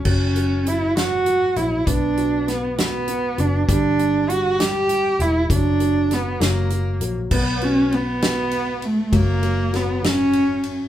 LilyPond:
<<
  \new Staff \with { instrumentName = "Cello" } { \time 6/8 \key b \minor \tempo 4. = 66 cis'4 e'8 fis'4 e'8 | d'4 b8 b4 d'8 | d'4 fis'8 g'4 e'8 | d'4 b8 ais4 r8 |
b8 cis'8 b4. a8 | ais4 b8 cis'4 r8 | }
  \new Staff \with { instrumentName = "Grand piano" } { \clef bass \time 6/8 \key b \minor fis8 fis8 fis8 fis8 fis8 fis8 | b8 fis'8 b8 fis'8 b8 fis'8 | g8 g8 g8 g8 g8 g8 | fis8 fis8 fis8 fis8 fis8 fis8 |
b8 fis'8 b8 fis'4. | fis8 fis8 fis8 fis4. | }
  \new Staff \with { instrumentName = "Fingered electric bass" } { \clef bass \time 6/8 \key b \minor fis,,2~ fis,,8 ais,,8 | b,,2~ b,,8 fis,,8 | g,,2~ g,,8 e,,8 | fis,,4. fis,,4 ais,,8 |
b,,2. | fis,,2. | }
  \new DrumStaff \with { instrumentName = "Drums" } \drummode { \time 6/8 <cymc bd>8 hh8 hh8 <hh sn>8 hh8 hh8 | <hh bd>8 hh8 <hh sn>8 <hh sn>8 hh8 hh8 | <hh bd>8 hh8 hh8 <hh sn>8 hh8 hh8 | <hh bd>8 hh8 <hh sn>8 <hh sn>8 hh8 hh8 |
<cymc bd>8 cymr8 cymr8 <cymr sn>8 cymr8 cymr8 | <bd cymr>8 cymr8 <cymr sn>8 <cymr sn>8 cymr8 cymr8 | }
>>